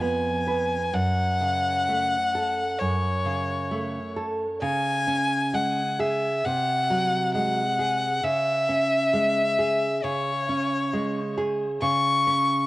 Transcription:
Already playing: nylon-string guitar F2 F3
0.01 nylon-string guitar B3, violin G#5
0.47 nylon-string guitar B4
0.94 nylon-string guitar F#2, violin F#5
1.41 nylon-string guitar C#3
1.89 nylon-string guitar A3
2.35 nylon-string guitar A4
2.79 nylon-string guitar F#2, violin C#5
3.25 nylon-string guitar C#3
3.71 nylon-string guitar A3
4.16 nylon-string guitar A4
4.62 nylon-string guitar C#3, violin G#5
5.07 nylon-string guitar C#4
5.54 nylon-string guitar G#3, violin F#5
5.99 nylon-string guitar G#4, violin E5
6.46 nylon-string guitar C3, violin F#5
6.90 nylon-string guitar F#3
7.34 nylon-string guitar G#3, violin F#5
7.79 nylon-string guitar G#4
8.23 nylon-string guitar C#3, violin E5
8.69 nylon-string guitar C#4
9.13 nylon-string guitar G#3
9.59 nylon-string guitar G#4
10.04 nylon-string guitar C#3, violin C#5
10.49 nylon-string guitar C#4
10.93 nylon-string guitar G#3
11.38 nylon-string guitar G#4
11.82 nylon-string guitar C#3, violin C#6
12.27 nylon-string guitar C#4

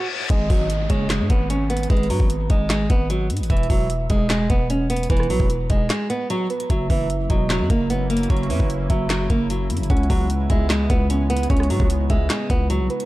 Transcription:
Already playing: reverse cymbal
0.30 808-style bass G#1, nylon-string guitar G#3, soft synth lead D#5, kick, closed hi-hat, downlifter
0.50 808-style bass G#1, nylon-string guitar F#3, kick, open hi-hat
0.70 closed hi-hat
0.90 808-style bass F#1, nylon-string guitar G#3, soft synth lead C#5, kick, closed hi-hat
1.10 nylon-string guitar G#3, snare, clap, closed hi-hat
1.20 808-style bass G#2
1.30 808-style bass G#1, nylon-string guitar B3, kick, closed hi-hat
1.50 nylon-string guitar C#4, closed hi-hat
1.70 nylon-string guitar B3, closed hi-hat
1.77 closed hi-hat
1.83 closed hi-hat
1.90 808-style bass G#1, nylon-string guitar G#3, soft synth lead B4, kick, closed hi-hat
1.97 closed hi-hat
2.03 closed hi-hat
2.10 808-style bass G#2, nylon-string guitar F#3, open hi-hat
2.20 808-style bass G#1, kick
2.30 closed hi-hat
2.50 808-style bass G#1, nylon-string guitar G#3, soft synth lead D#5, kick, closed hi-hat
2.70 nylon-string guitar G#3, snare, clap, closed hi-hat
2.90 808-style bass G#1, nylon-string guitar B3, kick, closed hi-hat
3.10 nylon-string guitar F#3, closed hi-hat
3.30 808-style bass G#2, closed hi-hat
3.37 808-style bass G#1, closed hi-hat
3.43 closed hi-hat
3.50 808-style bass E1, nylon-string guitar E3, soft synth lead E5, kick, closed hi-hat
3.57 closed hi-hat
3.63 closed hi-hat
3.70 808-style bass E1, nylon-string guitar F#3, kick, open hi-hat
3.90 closed hi-hat
4.10 808-style bass E1, nylon-string guitar G#3, soft synth lead D#5, kick, closed hi-hat
4.30 nylon-string guitar G#3, snare, clap, closed hi-hat
4.50 808-style bass E1, nylon-string guitar B3, kick, closed hi-hat
4.70 nylon-string guitar C#4, closed hi-hat
4.90 nylon-string guitar B3, closed hi-hat
4.97 closed hi-hat
5.03 closed hi-hat
5.10 808-style bass E1, nylon-string guitar E3, soft synth lead B4, kick, closed hi-hat
5.17 cross-stick, closed hi-hat
5.23 closed hi-hat
5.30 808-style bass B1, nylon-string guitar F#3, open hi-hat
5.40 808-style bass E1, kick
5.50 closed hi-hat
5.70 808-style bass E1, nylon-string guitar G#3, soft synth lead D#5, kick, closed hi-hat
5.90 nylon-string guitar G#3, snare, clap, closed hi-hat
6.10 nylon-string guitar B3, closed hi-hat
6.30 nylon-string guitar F#3, closed hi-hat
6.50 soft synth lead B4, closed hi-hat
6.60 closed hi-hat
6.70 808-style bass F#1, analog synth pad C#3 F#3 A#3 E4, nylon-string guitar F#3, soft synth lead E5, kick, closed hi-hat
6.90 808-style bass F#1, nylon-string guitar E3, kick, open hi-hat
7.10 closed hi-hat
7.30 808-style bass E1, nylon-string guitar F#3, soft synth lead D#5, kick, closed hi-hat
7.50 nylon-string guitar F#3, snare, clap, closed hi-hat
7.60 808-style bass F#2
7.70 808-style bass F#1, nylon-string guitar A#3, kick, closed hi-hat
7.90 nylon-string guitar B3, closed hi-hat
8.10 nylon-string guitar A#3, closed hi-hat
8.17 closed hi-hat
8.23 closed hi-hat
8.30 808-style bass F#1, nylon-string guitar F#3, soft synth lead C#5, kick, closed hi-hat
8.37 closed hi-hat
8.43 closed hi-hat
8.50 808-style bass F#2, nylon-string guitar E3, open hi-hat
8.60 808-style bass F#1, kick
8.70 closed hi-hat
8.90 808-style bass F#1, nylon-string guitar F#3, soft synth lead E5, kick, closed hi-hat
9.10 nylon-string guitar F#3, snare, clap, closed hi-hat
9.30 808-style bass F#1, nylon-string guitar A#3, kick, closed hi-hat
9.50 nylon-string guitar F#3, closed hi-hat
9.70 808-style bass F#2, closed hi-hat
9.77 808-style bass F#1, closed hi-hat
9.83 closed hi-hat
9.90 808-style bass C#2, analog synth pad G#3 B3, nylon-string guitar C#4, soft synth lead F#5, kick, closed hi-hat
9.97 closed hi-hat
10.03 closed hi-hat
10.10 808-style bass C#2, nylon-string guitar F#3, kick, open hi-hat
10.30 closed hi-hat
10.50 808-style bass C#2, nylon-string guitar G#3, soft synth lead E5, kick, closed hi-hat
10.70 nylon-string guitar G#3, snare, clap, closed hi-hat
10.90 808-style bass C#2, nylon-string guitar B3, kick, closed hi-hat
11.10 nylon-string guitar C#4, closed hi-hat
11.30 nylon-string guitar B3, closed hi-hat
11.37 closed hi-hat
11.43 closed hi-hat
11.50 808-style bass C#2, nylon-string guitar C#4, soft synth lead C#5, kick, closed hi-hat
11.57 cross-stick, closed hi-hat
11.63 closed hi-hat
11.70 808-style bass G#2, nylon-string guitar F#3, open hi-hat
11.80 808-style bass C#2, kick
11.90 closed hi-hat
12.10 808-style bass C#2, nylon-string guitar G#3, soft synth lead E5, kick, closed hi-hat
12.30 nylon-string guitar G#3, snare, clap, closed hi-hat
12.50 808-style bass C#2, nylon-string guitar B3, kick, closed hi-hat
12.70 nylon-string guitar F#3, closed hi-hat
12.80 808-style bass B1
12.90 soft synth lead B4, closed hi-hat
13.00 closed hi-hat

